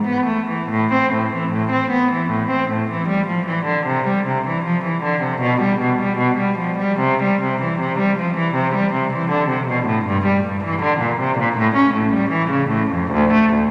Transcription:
0.07 B3
0.26 A3
0.47 E3
0.69 A2
0.93 C4
1.13 A2
1.33 E3
1.52 A2
1.71 C4
1.91 B3
2.12 E3
2.30 A2
2.50 C4
2.70 A2
2.90 E3
3.08 G3
3.27 F3
3.46 E3
3.66 D3
3.86 C3
4.07 G3
4.27 C3
4.47 E3
4.64 F3
4.84 E3
5.03 D3
5.22 C3
5.41 B2
5.62 G3
5.80 B2
6.00 G3
6.18 B2
6.37 G3
6.58 F3
6.77 G3
6.99 C3
7.23 G3
7.42 C3
7.61 E3
7.80 C3
7.99 G3
8.18 F3
8.37 E3
8.55 C3
8.75 G3
8.94 C3
9.13 E3
9.31 D3
9.49 C3
9.68 B2
9.86 A2
10.06 G2
10.26 G3
10.47 G2
10.64 E3
10.82 D3
11.00 A#2
11.20 C3
11.39 A#2
11.57 A2
11.76 C#4
11.94 A2
12.13 G3
12.30 E3
12.50 C#3
12.70 A2
12.91 F2
13.11 D2
13.33 A3
13.53 D2

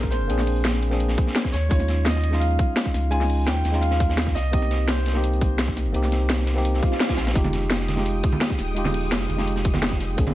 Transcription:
Already playing: A#1 A#3 C4 D4 G#4 A#4
0.03 kick, snare
0.11 C5, snare, closed hi-hat, open hi-hat, cabasa
0.21 F1, cabasa
0.28 A#1 A#3 C4 D4 G#4, closed hi-hat, cabasa
0.39 snare, closed hi-hat, cabasa
0.47 closed hi-hat, open hi-hat
0.56 cabasa
0.64 snare, closed hi-hat, cabasa
0.73 snare
0.83 closed hi-hat, cabasa
0.90 A#3 C4 D4 G#4, snare
1.00 closed hi-hat, cabasa
1.08 snare
1.17 kick, closed hi-hat, cabasa
1.27 snare
1.36 snare, closed hi-hat, cabasa
1.44 kick, snare
1.52 D#2 C#5, snare, closed hi-hat, open hi-hat, cabasa
1.62 cabasa
1.69 D#2 G#3 C#4 D#4 F4 C#5, kick, closed hi-hat, cabasa
1.80 snare, closed hi-hat, cabasa
1.88 snare, closed hi-hat
1.97 cabasa
2.05 D#5, snare, closed hi-hat, cabasa
2.16 snare
2.23 closed hi-hat, cabasa
2.31 G#3 C#4 D#4 F4, snare
2.40 F5, closed hi-hat, cabasa
2.50 closed hi-hat
2.59 kick, closed hi-hat, cabasa
2.76 snare, closed hi-hat, cabasa
2.86 kick, snare
2.94 C#2, snare, closed hi-hat, open hi-hat, cabasa
3.03 cabasa
3.10 G#3 C#4 D#4 F4 G#5, closed hi-hat, cabasa
3.21 snare, closed hi-hat, cabasa
3.30 closed hi-hat, open hi-hat
3.39 cabasa
3.46 D#2 G5, snare, closed hi-hat, cabasa
3.55 snare
3.65 D#2, snare, closed hi-hat, cabasa
3.72 G#3 C#4 D#4 F4, snare
3.81 F5, closed hi-hat, cabasa
3.91 snare
4.00 kick, closed hi-hat, cabasa
4.10 snare
4.17 snare, closed hi-hat, cabasa
4.26 kick, snare
4.35 C2 D#5, snare, closed hi-hat, open hi-hat, cabasa
4.44 cabasa
4.51 A#3 C4 D#4 G4 D#5, kick, closed hi-hat, cabasa
4.62 snare, closed hi-hat, cabasa
4.71 snare, closed hi-hat
4.80 cabasa
4.88 C5, snare, closed hi-hat, cabasa
4.97 snare
5.06 snare, closed hi-hat, cabasa
5.13 A#3 C4 D#4 G4, snare
5.24 closed hi-hat, cabasa
5.33 closed hi-hat
5.41 kick, closed hi-hat, cabasa
5.58 snare, closed hi-hat, cabasa
5.68 kick, snare
5.77 snare, closed hi-hat, open hi-hat, cabasa
5.85 G1, cabasa
5.93 C2 A#3 C4 D#4 G4, closed hi-hat, cabasa
6.03 snare, closed hi-hat, cabasa
6.12 snare, closed hi-hat
6.21 cabasa
6.29 snare, closed hi-hat, cabasa
6.39 snare
6.47 snare, closed hi-hat, cabasa
6.54 A#3 C4 D#4 G4, snare
6.65 closed hi-hat, swell, cabasa
6.74 snare
6.83 kick, closed hi-hat, cabasa
6.92 snare
7.00 snare, closed hi-hat, cabasa
7.09 kick, snare, closed hi-hat
7.17 A#1, snare, closed hi-hat, open hi-hat, cabasa
7.27 snare, closed hi-hat, cabasa
7.34 F1 G#3 D#4 F4 G4 G5 D#6, kick, closed hi-hat, cabasa
7.44 snare, closed hi-hat, high conga, cabasa
7.53 snare, closed hi-hat, ride
7.62 cabasa
7.70 snare, closed hi-hat, cabasa
7.80 snare
7.88 snare, closed hi-hat, ride, high conga, cabasa
7.96 G#3 D#4 F4 G4, snare
8.06 closed hi-hat, cabasa
8.15 closed hi-hat
8.23 kick, closed hi-hat, ride, cabasa
8.32 high conga
8.41 snare, closed hi-hat, cabasa
8.50 kick, snare
8.59 D#1, snare, closed hi-hat, open hi-hat, ride, cabasa
8.68 cabasa
8.75 G#3 D#4 F4 G4, closed hi-hat, cabasa
8.85 snare, closed hi-hat, high conga, cabasa
8.94 closed hi-hat, open hi-hat, ride
9.03 cabasa
9.12 F1, snare, closed hi-hat, cabasa
9.21 snare
9.29 F1, closed hi-hat, ride, high conga, cabasa
9.37 G#3 D#4 F4 G4, snare
9.47 closed hi-hat, cabasa
9.56 snare
9.64 kick, closed hi-hat, ride, cabasa
9.73 snare, high conga
9.82 snare, closed hi-hat, cabasa
9.91 kick, snare
10.00 snare, closed hi-hat, open hi-hat, ride, cabasa
10.09 cabasa
10.16 A#1 A#3 C4 D4 G#4 D5 C6, kick, closed hi-hat, cabasa
10.27 snare, closed hi-hat, high conga, cabasa

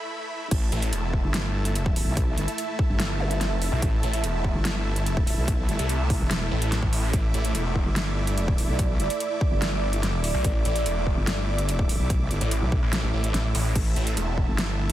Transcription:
Already playing: A3 E4 E5 B5
0.51 A1 A3 E4 E5 A5, kick, closed hi-hat, crash
0.72 A1, closed hi-hat
0.77 E5
0.82 closed hi-hat
0.93 E1, closed hi-hat
1.13 kick
1.24 G1
1.34 snare, closed hi-hat
1.65 closed hi-hat
1.76 closed hi-hat
1.86 kick
1.96 open hi-hat
2.07 B1
2.17 kick, closed hi-hat
2.38 G1, closed hi-hat
2.48 closed hi-hat
2.58 closed hi-hat
2.79 kick
2.89 G1
3.00 snare, closed hi-hat
3.20 zap
3.31 closed hi-hat
3.41 snare, closed hi-hat
3.46 F#1
3.62 open hi-hat
3.72 B1
3.82 A1, kick, closed hi-hat
4.03 A1, closed hi-hat
4.13 closed hi-hat
4.24 E1, closed hi-hat
4.44 kick
4.55 G1
4.65 snare, closed hi-hat
4.96 closed hi-hat
5.06 closed hi-hat
5.17 kick
5.27 open hi-hat
5.38 B1
5.48 kick, closed hi-hat
5.69 G1, closed hi-hat
5.79 C2, closed hi-hat
5.89 closed hi-hat
6.10 kick, open hi-hat
6.20 E1
6.31 snare, closed hi-hat
6.51 A1
6.62 closed hi-hat
6.72 snare, closed hi-hat
6.82 A1, kick
6.93 open hi-hat
7.13 A1 D6, kick, closed hi-hat
7.34 A1, closed hi-hat
7.45 D5, closed hi-hat
7.55 E1, closed hi-hat
7.76 kick
7.86 G1
7.96 snare, closed hi-hat
8.27 closed hi-hat
8.38 closed hi-hat
8.48 kick
8.58 open hi-hat
8.69 B1
8.79 kick, closed hi-hat
9.00 G1, closed hi-hat
9.10 closed hi-hat
9.20 closed hi-hat
9.41 kick
9.51 G1
9.62 snare, closed hi-hat
9.93 closed hi-hat
10.03 snare, closed hi-hat
10.24 open hi-hat
10.34 B1
10.44 A1, kick, closed hi-hat
10.65 A1, closed hi-hat
10.76 closed hi-hat
10.86 E1, closed hi-hat
11.07 kick
11.17 G1
11.27 snare, closed hi-hat
11.58 closed hi-hat
11.69 closed hi-hat
11.79 kick
11.89 open hi-hat
12.00 B1
12.10 kick, closed hi-hat
12.31 G1, closed hi-hat
12.41 A1, closed hi-hat
12.51 closed hi-hat
12.62 B1
12.72 kick
12.83 A1
12.93 snare, closed hi-hat
13.03 A1
13.13 A1
13.24 closed hi-hat
13.34 A1, snare, closed hi-hat
13.55 A1, open hi-hat
13.76 A1 A3 E4 E5 A5, kick, closed hi-hat, crash
13.96 A1, closed hi-hat
14.07 closed hi-hat
14.17 E1, closed hi-hat
14.38 kick
14.48 G1
14.58 snare, closed hi-hat

